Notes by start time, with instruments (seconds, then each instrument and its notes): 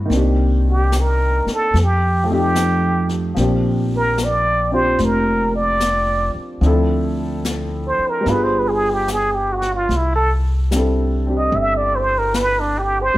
Already playing: grand piano E3 A3 B3 C#4 D4 E4 F#5
0.06 grand piano D#3 A#3
0.10 upright bass C2, grand piano C4 D4, brush sweep, snare
0.16 grand piano G4
0.70 muted trumpet G4
0.92 snare, hi-hat pedal
1.01 muted trumpet A#4
1.46 muted upright bass stroke, snare
1.53 muted trumpet A4
1.74 upright bass F2, brush sweep, snare
1.84 muted trumpet G4
2.24 grand piano F3 A3
2.28 grand piano C4 D#4
2.34 grand piano G4, muted trumpet G4
2.55 snare, hi-hat pedal
3.09 snare
3.35 upright bass A#1, grand piano F3 A#3 C4 D4, brush sweep, snare
3.40 grand piano G4
3.96 muted trumpet A#4
4.18 snare, hi-hat pedal
4.24 muted trumpet D5
4.72 grand piano C4 D4 F4 G4, muted trumpet C5
4.99 upright bass F1, brush sweep, snare
5.05 muted trumpet A#4
5.56 muted trumpet D5
5.80 snare, hi-hat pedal
6.35 muted upright bass stroke
6.61 upright bass D2, grand piano F3 C4 D4, brush sweep, snare
6.65 grand piano E4 A4
7.45 snare, hi-hat pedal
7.88 muted trumpet C5
7.99 muted upright bass stroke
8.10 muted trumpet A#4
8.21 grand piano G3 B3
8.26 upright bass G1, grand piano D4 F4, brush sweep, snare
8.31 grand piano G#4, muted trumpet B4
8.44 muted trumpet C5
8.59 muted trumpet B4
8.68 muted trumpet G#4
8.93 muted trumpet G4
9.08 snare, hi-hat pedal
9.12 muted trumpet G#4
9.34 muted trumpet G4
9.52 muted trumpet F#4
9.62 snare
9.75 muted trumpet F4
9.89 upright bass C2, brush sweep, snare
9.96 muted trumpet E4
10.15 muted trumpet A4
10.71 grand piano G3 C4 D4, snare, hi-hat pedal
10.75 grand piano E4 A4
11.27 grand piano C4 D4 G4
11.38 muted trumpet D#5
11.52 upright bass G1, muted trumpet E5, brush sweep
11.77 muted trumpet D5
11.95 muted trumpet C5
12.19 muted trumpet A#4
12.34 muted trumpet B4, snare, hi-hat pedal
12.60 muted trumpet D4
12.78 muted trumpet G4
13.02 muted trumpet C5
13.14 grand piano G3